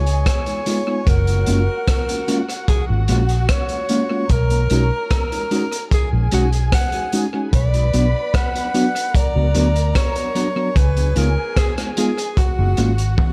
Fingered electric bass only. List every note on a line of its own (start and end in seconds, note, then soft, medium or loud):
0.00 0.23 C#2 medium
1.07 1.44 F#1 loud
1.48 1.66 F#1 loud
2.90 3.08 G#1 medium
3.09 3.46 A#1 medium
4.30 4.67 B1 medium
4.71 4.89 B1 medium
6.13 6.31 A#1 medium
6.33 6.69 B1 medium
7.53 7.90 B1 loud
7.94 8.13 B1 loud
9.36 9.54 C#2 medium
9.56 9.92 D2 medium
10.76 11.13 C#2 loud
11.17 11.35 C#2 loud
12.59 12.76 F#1 medium
12.78 13.15 G#1 medium